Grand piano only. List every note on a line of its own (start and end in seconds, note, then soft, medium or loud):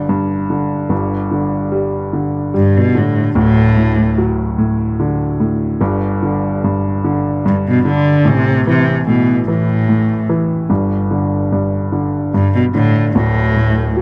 0.00 0.87 G1 medium
0.00 0.09 G2 medium
0.00 0.50 D3 medium
0.09 0.88 G2 medium
0.50 0.90 D3 soft
0.89 3.31 G1 medium
0.89 3.31 G2 medium
1.31 2.12 D3 soft
1.72 2.52 G3 medium
2.13 2.93 D3 soft
2.54 3.33 G3 soft
2.95 3.35 D3 soft
3.35 5.77 D1 medium
3.35 5.76 D2 medium
3.77 4.57 A2 soft
4.18 5.77 F#3 soft
4.58 5.39 A2 soft
5.00 5.79 D3 medium
5.40 5.80 A2 soft
5.81 8.21 G1 medium
5.81 6.63 G2 medium
6.23 7.03 D3 soft
6.64 7.44 G2 medium
7.04 7.84 D3 medium
7.45 8.24 G2 medium
7.85 8.24 D3 medium
8.25 10.66 A1 medium
8.25 9.06 A2 medium
8.67 9.46 E3 soft
9.08 9.87 A2 soft
9.48 10.28 E3 soft
9.89 10.68 A2 soft
10.29 10.69 E3 soft
10.70 13.11 G1 medium
10.70 11.51 G2 medium
11.11 11.91 D3 soft
11.52 12.32 G2 soft
11.92 12.73 D3 soft
12.34 13.13 G2 soft
12.74 13.14 D3 soft
13.15 14.02 D1 medium
13.15 14.02 D2 medium
13.56 14.02 A2 soft
13.97 14.02 F#3 soft